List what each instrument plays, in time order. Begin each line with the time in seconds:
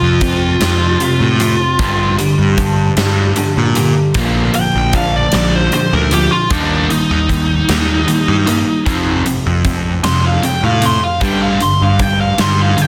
Already playing: overdriven electric guitar F2 C3, clean electric guitar F2 F3, lead electric guitar F4
0.02 picked electric bass F2
0.21 overdriven electric guitar F2 C3, clean electric guitar C4, kick, closed hi-hat
0.61 overdriven electric guitar F2 C3, picked electric bass F2, clean electric guitar F3, snare, closed hi-hat
1.00 overdriven electric guitar F2 C3, clean electric guitar C3, closed hi-hat
1.20 picked electric bass A2
1.40 overdriven electric guitar F2 C3, clean electric guitar F3, closed hi-hat
1.79 clean electric guitar G2, overdriven electric guitar G2 D3 G3, picked electric bass G2, kick, closed hi-hat
2.18 overdriven electric guitar G2 D3, clean electric guitar G3, closed hi-hat
2.39 picked electric bass G2
2.57 overdriven electric guitar G2 D3, clean electric guitar D4, kick, closed hi-hat
2.97 picked electric bass G2, overdriven electric guitar G2 D3, clean electric guitar G3, snare, closed hi-hat
3.36 overdriven electric guitar G2 D3, clean electric guitar D3, closed hi-hat
3.57 picked electric bass A#2
3.75 overdriven electric guitar G2 D3, clean electric guitar G3, closed hi-hat
4.14 picked electric bass A#1, clean electric guitar A#2, overdriven electric guitar A#2 D3 F3 A#3, kick, closed hi-hat
4.54 overdriven electric guitar A#2 D3 F3, clean electric guitar F3, lead electric guitar G5, closed hi-hat
4.75 picked electric bass A#1
4.93 overdriven electric guitar A#2 D3 F3, clean electric guitar D4, lead electric guitar F5, kick, closed hi-hat
5.16 lead electric guitar D5
5.32 picked electric bass A#1, overdriven electric guitar A#2 D3 F3, clean electric guitar F3, lead electric guitar D5, snare, closed hi-hat
5.56 lead electric guitar C5
5.72 overdriven electric guitar A#2 D3 F3, clean electric guitar D3, lead electric guitar C5, closed hi-hat
5.93 picked electric bass D2, lead electric guitar A#4
6.11 overdriven electric guitar A#2 D3 F3, clean electric guitar F3, lead electric guitar G4, closed hi-hat
6.32 lead electric guitar F4
6.50 picked electric bass D#2, overdriven electric guitar D#3 G3 A#3 D#4, lead electric guitar D4, kick, closed hi-hat
6.90 overdriven electric guitar D#3 G3 A#3, lead electric guitar D#4, closed hi-hat
7.11 picked electric bass D#2
7.29 overdriven electric guitar D#3 G3 A#3, kick, closed hi-hat
7.68 picked electric bass D#2, overdriven electric guitar D#3 G3 A#3, snare, closed hi-hat
8.07 overdriven electric guitar D#3 G3 A#3, closed hi-hat
8.28 picked electric bass G2
8.46 overdriven electric guitar D#3 G3 A#3, closed hi-hat
8.86 overdriven electric guitar F2 C3 F3, picked electric bass F2, kick, closed hi-hat
9.26 overdriven electric guitar F2 C3, closed hi-hat
9.46 picked electric bass F2
9.65 overdriven electric guitar F2 C3, kick, closed hi-hat
10.04 overdriven electric guitar F2 C3, picked electric bass F2, lead electric guitar C6, snare, closed hi-hat
10.26 lead electric guitar F5
10.42 overdriven electric guitar F2 C3, lead electric guitar G5, closed hi-hat
10.63 picked electric bass A2, lead electric guitar F5
10.82 overdriven electric guitar F2 C3, lead electric guitar C6, closed hi-hat
11.04 lead electric guitar F5
11.21 picked electric bass G2, overdriven electric guitar G2 D3 G3, lead electric guitar G5, kick, closed hi-hat
11.42 lead electric guitar F5
11.60 overdriven electric guitar G2 D3, lead electric guitar C6, closed hi-hat
11.81 picked electric bass G2, lead electric guitar F5
11.99 overdriven electric guitar G2 D3, lead electric guitar G5, kick, closed hi-hat
12.21 lead electric guitar F5
12.38 overdriven electric guitar G2 D3, picked electric bass G2, lead electric guitar C6, snare, closed hi-hat
12.62 lead electric guitar F5
12.77 overdriven electric guitar G2 D3, closed hi-hat
12.82 lead electric guitar G5